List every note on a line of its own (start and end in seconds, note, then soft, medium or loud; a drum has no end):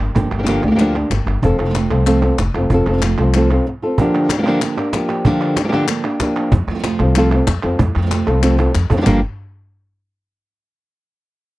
0.00 0.12 G1 medium
0.00 0.15 A#3 soft
0.00 0.15 D4 soft
0.00 0.14 G4 soft
0.15 0.28 G1 medium
0.15 0.30 D3 medium
0.15 0.31 F3 medium
0.15 0.31 A#3 medium
0.15 0.31 D4 medium
0.15 0.30 G4 medium
0.15 muted nylon-string guitar stroke medium
0.15 cajon bass loud
0.31 0.57 G1 medium
0.31 0.47 A#3 soft
0.31 0.47 D4 soft
0.31 0.46 G4 soft
0.39 0.42 F3 medium
0.39 0.42 A#3 medium
0.39 0.43 D4 medium
0.39 0.43 G4 medium
0.43 0.46 F3 medium
0.43 0.47 A#3 medium
0.43 0.47 D4 medium
0.43 0.48 G4 medium
0.43 clap medium
0.47 0.63 D3 medium
0.47 0.63 F3 medium
0.47 0.63 A#3 medium
0.47 0.63 D4 medium
0.47 0.63 D4 loud
0.47 0.62 G4 medium
0.47 0.62 G4 loud
0.47 cajon slap medium
0.63 1.02 D2 loud
0.63 0.69 F3 medium
0.63 0.78 A#3 soft
0.63 0.68 A#3 soft
0.63 0.78 D4 soft
0.63 0.66 D4 medium
0.63 0.67 G4 medium
0.63 0.78 G4 medium
0.63 clap soft
0.68 0.74 F3 medium
0.68 0.74 A#3 medium
0.68 0.75 D4 medium
0.68 0.71 G4 medium
0.72 0.79 F3 medium
0.72 0.79 A#3 medium
0.72 0.75 G4 medium
0.76 0.95 D3 medium
0.76 0.79 D4 medium
0.76 0.80 G4 medium
0.76 muted nylon-string guitar stroke medium
0.76 clap medium
0.80 0.95 F3 medium
0.80 0.95 A#3 loud
0.80 0.95 D4 loud
0.80 0.95 G4 loud
0.95 1.43 A#3 soft
0.95 1.11 A#3 medium
0.95 1.43 D4 soft
0.95 1.11 D4 medium
0.95 1.42 G4 medium
0.95 1.11 G4 medium
1.10 1.23 G1 medium
1.10 muted nylon-string guitar stroke medium
1.10 cajon slap loud
1.10 clap medium
1.26 1.40 G1 medium
1.26 clap medium
1.42 1.56 F1 loud
1.42 1.58 F3 medium
1.42 1.59 C4 medium
1.42 1.59 F4 loud
1.42 1.58 A4 loud
1.42 muted nylon-string guitar stroke medium
1.42 cajon bass loud
1.58 1.85 F1 medium
1.58 1.74 C4 medium
1.58 1.75 F4 medium
1.58 1.75 A4 medium
1.65 1.68 F3 soft
1.65 1.69 A3 soft
1.65 1.70 C4 medium
1.65 1.70 F4 medium
1.70 1.73 F3 medium
1.70 1.74 A3 medium
1.70 1.74 C4 medium
1.70 1.74 F4 medium
1.74 2.05 C3 medium
1.74 2.05 F3 medium
1.74 2.06 A3 medium
1.74 2.06 C4 medium
1.74 2.06 F4 medium
1.74 muted nylon-string guitar stroke medium
1.74 cajon slap loud
1.74 clap medium
1.90 2.29 C2 loud
1.90 2.05 C4 soft
1.90 2.06 F4 medium
1.90 2.06 A4 medium
2.06 2.22 C3 medium
2.06 2.22 F3 medium
2.06 2.22 A3 medium
2.06 2.22 C4 medium
2.06 2.22 F4 medium
2.06 2.21 F4 medium
2.06 2.21 A4 medium
2.06 clap medium
2.22 2.38 A3 soft
2.22 2.38 C4 soft
2.22 2.38 C4 medium
2.22 2.38 F4 medium
2.22 2.38 A4 medium
2.22 clap medium
2.38 2.51 F1 medium
2.38 muted nylon-string guitar stroke medium
2.38 cajon slap loud
2.38 clap medium
2.54 2.67 F1 medium
2.54 2.71 A3 soft
2.54 2.70 C4 soft
2.54 2.71 C4 medium
2.54 2.70 F4 soft
2.54 2.71 F4 medium
2.54 2.70 A4 medium
2.54 clap medium
2.70 2.83 F1 medium
2.70 2.86 F3 medium
2.70 2.87 C4 medium
2.70 2.87 F4 medium
2.70 2.87 A4 loud
2.70 muted nylon-string guitar stroke medium
2.70 cajon bass loud
2.87 3.12 F1 medium
2.87 3.03 C4 soft
2.87 3.03 F4 medium
2.87 3.03 A4 medium
2.93 2.96 F3 soft
2.93 2.97 A3 soft
2.93 2.97 C4 medium
2.93 2.98 F4 medium
2.98 3.01 F3 medium
2.98 3.02 A3 medium
2.98 3.02 C4 medium
2.98 3.02 F4 medium
3.02 3.33 C3 medium
3.02 3.33 F3 medium
3.02 3.34 A3 medium
3.02 3.34 C4 medium
3.02 3.34 F4 medium
3.02 muted nylon-string guitar stroke medium
3.02 cajon slap loud
3.02 clap medium
3.18 3.57 C2 loud
3.18 3.35 C4 soft
3.18 3.35 F4 medium
3.18 3.34 A4 medium
3.18 clap medium
3.34 3.50 C3 medium
3.34 3.50 F3 medium
3.34 3.50 A3 medium
3.34 3.50 C4 medium
3.34 3.49 F4 medium
3.34 3.51 F4 medium
3.34 3.50 A4 medium
3.34 clap medium
3.50 3.66 A3 soft
3.50 3.66 C4 soft
3.50 3.67 C4 soft
3.50 3.66 F4 medium
3.50 3.67 F4 medium
3.50 3.66 A4 medium
3.50 clap soft
3.66 muted nylon-string guitar stroke medium
3.82 3.98 A3 soft
3.82 3.98 C4 soft
3.82 3.99 C4 soft
3.82 3.98 F4 soft
3.82 3.99 F4 soft
3.82 3.98 A4 medium
3.98 4.14 D3 medium
3.98 4.30 D3 loud
3.98 4.14 F3 medium
3.98 4.31 F3 medium
3.98 4.14 A#3 medium
3.98 4.31 A#3 loud
3.98 4.14 D4 medium
3.98 4.31 D4 medium
3.98 4.13 G4 medium
3.98 4.30 G4 loud
3.98 cajon bass loud
4.14 4.30 A#3 soft
4.14 4.30 D4 soft
4.14 4.30 G4 medium
4.29 4.37 A#3 soft
4.29 4.38 D4 medium
4.29 4.38 G4 medium
4.29 muted nylon-string guitar stroke medium
4.29 cajon slap loud
4.29 clap medium
4.38 4.41 F3 medium
4.38 4.42 A#3 medium
4.38 4.42 D4 medium
4.38 4.42 G4 medium
4.42 4.46 F3 medium
4.42 4.46 A#3 medium
4.42 4.46 D4 medium
4.42 4.47 G4 medium
4.42 4.61 G4 medium
4.47 4.61 D3 medium
4.47 4.61 F3 loud
4.47 4.61 A#3 soft
4.47 4.62 A#3 loud
4.47 4.61 D4 soft
4.47 4.62 D4 loud
4.47 4.62 G4 loud
4.62 4.77 D3 medium
4.62 4.77 F3 medium
4.62 4.77 A#3 medium
4.62 4.77 D4 medium
4.62 4.76 G4 medium
4.62 muted nylon-string guitar stroke medium
4.62 clap loud
4.77 4.92 A#3 soft
4.77 4.93 A#3 medium
4.77 4.93 D4 soft
4.77 4.93 D4 medium
4.77 4.93 G4 medium
4.93 5.25 F3 medium
4.93 5.25 A#3 medium
4.93 5.25 D4 medium
4.93 5.26 G4 medium
4.93 muted nylon-string guitar stroke medium
4.93 cajon slap loud
4.93 clap medium
5.09 5.24 A#3 soft
5.09 5.24 D4 soft
5.09 5.24 G4 medium
5.09 clap medium
5.24 5.40 D3 medium
5.24 5.56 D3 loud
5.24 5.41 F3 medium
5.24 5.57 F3 loud
5.24 5.41 A#3 medium
5.24 5.57 A#3 loud
5.24 5.41 D4 medium
5.24 5.57 D4 medium
5.24 5.40 G4 medium
5.24 5.57 G4 medium
5.24 cajon bass loud
5.41 5.56 A#3 soft
5.41 5.56 D4 soft
5.41 5.56 G4 soft
5.56 5.63 A#3 medium
5.56 5.64 D4 medium
5.56 5.64 G4 medium
5.56 muted nylon-string guitar stroke medium
5.56 cajon slap loud
5.56 clap loud
5.64 5.67 F3 medium
5.64 5.67 A#3 medium
5.64 5.68 D4 medium
5.64 5.68 G4 medium
5.68 5.72 F3 medium
5.68 5.72 A#3 medium
5.68 5.72 D4 medium
5.68 5.72 G4 medium
5.68 5.88 G4 medium
5.73 5.87 D3 loud
5.73 5.87 F3 medium
5.73 5.88 A#3 soft
5.73 5.88 A#3 loud
5.73 5.88 D4 soft
5.73 5.88 D4 loud
5.73 5.88 G4 loud
5.73 clap medium
5.88 6.04 D3 medium
5.88 6.04 F3 medium
5.88 6.04 A#3 medium
5.88 6.03 D4 medium
5.88 6.02 G4 medium
5.88 muted nylon-string guitar stroke medium
5.88 cajon slap soft
5.88 clap loud
6.04 6.19 A#3 soft
6.04 6.20 A#3 medium
6.04 6.19 D4 medium
6.04 6.20 D4 medium
6.04 6.19 G4 medium
6.04 6.20 G4 medium
6.04 clap medium
6.20 6.52 F3 medium
6.20 6.52 A#3 medium
6.20 6.52 D4 medium
6.20 6.53 G4 medium
6.20 muted nylon-string guitar stroke medium
6.20 cajon bass medium
6.20 cajon slap loud
6.20 clap medium
6.36 6.52 A#3 soft
6.36 6.52 D4 soft
6.36 6.51 G4 medium
6.36 clap medium
6.52 6.65 F2 loud
6.52 muted nylon-string guitar stroke medium
6.52 cajon bass loud
6.67 6.93 F2 medium
6.67 6.73 F3 soft
6.67 6.74 A3 medium
6.67 6.74 C4 medium
6.67 6.75 F4 medium
6.74 6.78 F3 medium
6.74 6.78 A3 medium
6.74 6.79 C4 medium
6.74 6.79 F4 medium
6.79 6.83 F3 medium
6.79 6.83 A3 medium
6.79 6.83 C4 medium
6.79 6.83 F4 medium
6.83 6.99 C3 medium
6.83 6.99 F3 medium
6.83 6.99 A3 medium
6.83 6.99 C4 medium
6.83 6.98 F4 medium
6.83 cajon slap loud
6.83 clap loud
6.99 7.38 C2 loud
6.99 7.15 A3 soft
6.99 7.15 C4 soft
6.99 7.16 C4 medium
6.99 7.15 F4 medium
6.99 7.16 F4 medium
6.99 7.15 A4 medium
6.99 clap soft
7.15 7.31 C3 medium
7.15 7.31 F3 medium
7.15 7.31 A3 medium
7.15 7.31 C4 medium
7.15 7.32 C4 loud
7.15 7.30 F4 medium
7.15 7.32 F4 loud
7.15 7.31 A4 loud
7.15 clap loud
7.31 7.47 A3 soft
7.31 7.47 C4 soft
7.31 7.46 C4 medium
7.31 7.47 F4 medium
7.31 7.47 A4 medium
7.31 clap medium
7.47 7.60 F2 loud
7.47 muted nylon-string guitar stroke medium
7.47 cajon bass medium
7.47 cajon slap loud
7.47 clap loud
7.63 7.77 F2 medium
7.63 7.80 C4 medium
7.63 7.79 F4 medium
7.63 7.79 A4 medium
7.63 clap medium
7.79 7.92 F2 loud
7.79 muted nylon-string guitar stroke medium
7.79 cajon bass loud
7.96 8.21 F2 medium
7.96 8.01 F3 medium
7.96 8.01 A3 soft
7.96 8.01 C4 medium
7.96 8.02 F4 medium
8.02 8.05 F3 medium
8.02 8.05 A3 medium
8.02 8.06 C4 medium
8.02 8.06 F4 medium
8.06 8.10 F3 medium
8.06 8.10 A3 medium
8.06 8.10 C4 medium
8.06 8.11 F4 medium
8.11 8.26 C3 medium
8.11 8.26 F3 medium
8.11 8.27 A3 medium
8.11 8.27 C4 medium
8.11 8.25 F4 medium
8.11 cajon slap loud
8.11 clap loud
8.27 8.66 C2 loud
8.27 8.42 A3 soft
8.27 8.42 C4 soft
8.27 8.42 C4 medium
8.27 8.42 F4 medium
8.27 8.43 F4 medium
8.27 8.42 A4 medium
8.27 clap medium
8.42 8.58 C3 medium
8.42 8.58 F3 medium
8.42 8.58 A3 medium
8.42 8.58 C4 loud
8.42 8.58 C4 medium
8.42 8.59 F4 loud
8.42 8.57 F4 medium
8.42 8.57 A4 loud
8.42 cajon slap medium
8.42 clap loud
8.58 8.73 A3 soft
8.58 8.73 C4 soft
8.58 8.73 C4 medium
8.58 8.74 F4 medium
8.58 8.73 F4 medium
8.58 8.74 A4 medium
8.58 cajon slap medium
8.58 clap medium
8.74 8.88 F2 loud
8.74 muted nylon-string guitar stroke medium
8.74 clap medium
8.90 9.03 F2 medium
8.90 8.95 D3 soft
8.90 8.96 F3 soft
8.90 8.96 A#3 soft
8.90 8.97 C4 medium
8.90 8.96 D4 soft
8.90 8.98 F4 medium
8.90 8.96 G4 soft
8.90 8.98 A4 medium
8.90 cajon bass loud
8.96 9.00 D3 medium
8.96 9.00 F3 medium
8.96 9.01 F3 medium
8.96 9.00 A#3 medium
8.96 9.01 A#3 medium
8.96 9.01 D4 medium
8.96 9.01 G4 medium
8.96 9.02 G4 medium
9.01 9.04 D3 medium
9.01 9.05 D3 medium
9.01 9.05 F3 medium
9.01 9.05 A#3 medium
9.01 9.05 D4 medium
9.01 9.06 D4 medium
9.01 9.06 G4 medium
9.01 9.06 G4 loud
9.05 9.21 G1 medium
9.05 9.19 G2 medium
9.05 9.19 D3 medium
9.05 9.19 F3 medium
9.05 9.19 F3 loud
9.05 9.19 A#3 medium
9.05 9.19 A#3 loud
9.05 9.19 D4 medium
9.05 9.19 D4 loud
9.05 9.19 G4 medium
9.05 9.20 G4 loud
9.05 cajon bass loud
9.05 clap medium